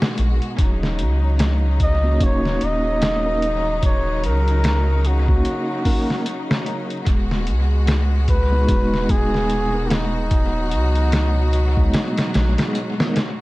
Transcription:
Already playing: B2 G#3 F#4
0.02 snare
0.18 A#1, closed hi-hat
0.42 closed hi-hat
0.58 D#1 C#3 F#3 D#4, kick, closed hi-hat
0.83 snare
0.99 C#2, closed hi-hat
1.39 snare, closed hi-hat
1.80 D#5, kick, closed hi-hat
2.03 A#3 C#4 D#4 F#4
2.20 D#1 A#3 C#4 D#4 F#4, kick, closed hi-hat
2.24 C#5
2.45 snare
2.61 D#1 D#5, closed hi-hat
3.02 snare, closed hi-hat
3.25 A#3 C#4 D#4 A#4
3.42 closed hi-hat
3.83 D#1 C#5, kick, closed hi-hat
4.24 C#2 A#4, closed hi-hat
4.48 closed hi-hat
4.64 snare, closed hi-hat
5.05 F#4, closed hi-hat
5.28 A#3 C#4 D#4 F#4, kick
5.45 closed hi-hat
5.85 A#3 C#4 D#4 A#4, kick, open hi-hat
6.10 snare
6.26 closed hi-hat
6.51 snare
6.66 closed hi-hat
6.90 closed hi-hat
7.07 D#1 B2 G#3 F#4, kick, closed hi-hat
7.31 snare
7.47 C#2, closed hi-hat
7.87 snare, closed hi-hat
8.28 B4, kick, closed hi-hat
8.52 G#3 B3 D#4 F#4
8.67 D#1 G#3 B3 D#4 F#4, kick, closed hi-hat
8.94 snare
9.09 D#1 G#4, kick, closed hi-hat
9.34 snare
9.50 closed hi-hat
9.73 G#3 B3 D#4 A#4
9.90 D#4, snare, closed hi-hat
10.30 D#1 F#3, kick, closed hi-hat
10.71 C#2, closed hi-hat
10.95 closed hi-hat
11.12 snare, closed hi-hat
11.53 closed hi-hat
11.76 G#3 B3 D#4 F#4, kick
11.94 snare, closed hi-hat
12.18 snare, closed hi-hat
12.34 A#1, snare, closed hi-hat
12.58 G#3 B3 D#4 G#4, snare, closed hi-hat
12.75 closed hi-hat
12.98 G#3 B3 D#4 A#4, snare
13.16 snare, closed hi-hat

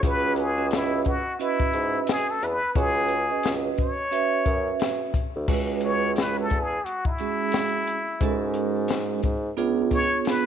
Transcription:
0.03 C#2 C#4 F#4 B4 D#5, kick, closed hi-hat
0.07 B4
0.36 closed hi-hat
0.40 G#4
0.58 C#4 F#4 B4 D#5
0.71 E4, snare, closed hi-hat
1.05 F#4, kick, closed hi-hat
1.39 C#4 E4 F#4 B4 D#5, closed hi-hat
1.60 kick
1.73 G#2, closed hi-hat
2.07 G#4, snare, closed hi-hat
2.31 A4
2.42 E2 B4, closed hi-hat
2.75 C#2 C#4 F#4 G#4 B4 C#5, kick, closed hi-hat
3.08 closed hi-hat
3.30 C#4 F#4 B4 D#5
3.43 C#2, snare, closed hi-hat
3.78 C#5, kick, closed hi-hat
4.11 C#4 F#4 B4 E5, closed hi-hat
4.46 F#2, kick, closed hi-hat
4.79 snare, closed hi-hat
5.14 kick, closed hi-hat
5.35 D2
5.48 C#2 G#3 C#4 F#4 B4, kick, crash
5.81 C#5, closed hi-hat
6.16 B4, snare, closed hi-hat
6.41 A4
6.50 E2, kick, closed hi-hat
6.63 G#4
6.85 F#4, closed hi-hat
7.05 D#4 E4, kick
7.18 G#3 C#4 F#4 G#4, closed hi-hat
7.52 snare, closed hi-hat
7.87 closed hi-hat
8.21 G#2 G#3 C#4 F#4 A4, kick, closed hi-hat
8.29 A#4
8.54 closed hi-hat
8.88 snare, closed hi-hat
9.23 G#2, kick, closed hi-hat
9.57 C#2 B3 D4 F4 G#4, closed hi-hat
9.91 B3 D4 F4 G#4 C#5, kick, closed hi-hat
10.25 B4, snare, closed hi-hat

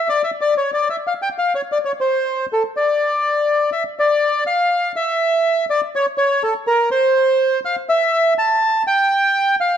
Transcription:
0.09 D5
0.24 E5
0.41 D5
0.57 C#5
0.74 D5
0.90 E5
1.07 F5
1.22 G5
1.38 F5
1.55 C#5
1.72 D5
1.85 C#5
2.01 C5
2.53 A4
2.77 D5
3.72 E5
3.99 D5
4.47 F5
4.96 E5
5.70 D5
5.95 C#5
6.18 C#5
6.43 A4
6.67 A#4
6.91 C5
7.65 F5
7.89 E5
8.38 A5
8.87 G5
9.61 F5

